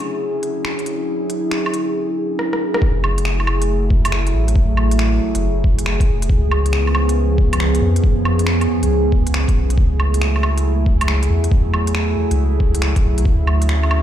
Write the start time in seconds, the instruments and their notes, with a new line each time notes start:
Already playing: ambient pad D3 F#3 C#4 E4 G#4
0.43 closed hi-hat
0.65 finger snap
0.79 closed hi-hat
0.86 closed hi-hat
1.30 closed hi-hat
1.51 finger snap
1.66 low woodblock
1.74 closed hi-hat
2.39 cross-stick
2.53 cross-stick
2.74 cross-stick
2.81 sub bass F#1, ambient pad F#3 A3 E4 G#4, kick
3.04 low woodblock
3.18 closed hi-hat
3.25 finger snap
3.40 low woodblock
3.47 low woodblock
3.62 closed hi-hat
3.90 kick
4.05 closed hi-hat, low woodblock
4.12 finger snap
4.27 closed hi-hat
4.34 sub bass A1
4.48 closed hi-hat
4.56 kick
4.77 low woodblock
4.91 closed hi-hat
4.99 finger snap
5.35 sub bass F#1, closed hi-hat
5.64 kick
5.79 closed hi-hat
5.86 finger snap
6.00 kick, closed hi-hat
6.08 sub bass E1
6.22 closed hi-hat
6.29 sub bass C#2, ambient pad F3 B3 C#4, kick
6.51 low woodblock
6.66 closed hi-hat
6.73 finger snap
6.87 low woodblock
6.95 low woodblock
7.09 closed hi-hat
7.38 kick
7.53 closed hi-hat, low woodblock
7.60 finger snap
7.75 closed hi-hat
7.82 sub bass F2
7.96 closed hi-hat
8.04 kick
8.25 low woodblock
8.39 closed hi-hat
8.47 finger snap
8.61 closed hi-hat, low woodblock
8.83 sub bass C#2, closed hi-hat
9.12 kick
9.27 closed hi-hat
9.34 finger snap
9.48 kick, closed hi-hat
9.56 sub bass B1
9.70 closed hi-hat
9.78 sub bass C#2, ambient pad F#3 A3 E4, kick
10.00 low woodblock
10.14 closed hi-hat
10.22 finger snap
10.36 low woodblock
10.43 low woodblock
10.58 closed hi-hat
10.86 kick
11.01 closed hi-hat, low woodblock
11.08 finger snap
11.23 closed hi-hat
11.30 sub bass E2
11.44 closed hi-hat
11.52 kick
11.74 low woodblock
11.87 closed hi-hat
11.95 finger snap
12.31 sub bass C#2, closed hi-hat
12.60 kick
12.75 closed hi-hat
12.82 finger snap
12.96 kick, closed hi-hat
13.04 sub bass B1
13.18 closed hi-hat
13.25 sub bass D2, ambient pad C#4 G#4, kick
13.47 low woodblock
13.62 closed hi-hat
13.69 finger snap
13.83 low woodblock
13.91 low woodblock